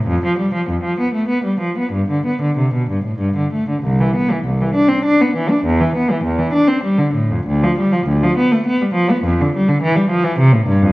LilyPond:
\new Staff \with { instrumentName = "Cello" } { \clef bass \time 3/4 \key c \major \tempo 4 = 100 f,16 f16 g16 f16 f,16 f16 b16 a16 b16 g16 f16 b16 | g,16 d16 b16 d16 c16 b,16 g,16 a,16 g,16 d16 a16 d16 | c,16 e16 b16 e16 c,16 e16 d'16 c'16 d'16 b16 e16 d'16 | e,16 e16 b16 e16 e,16 e16 d'16 c'16 g16 d16 a,16 f,16 |
d,16 f16 g16 f16 d,16 f16 b16 a16 b16 g16 f16 b16 | f,16 d16 g16 d16 e16 g16 f16 e16 c16 a,16 g,16 f,16 | }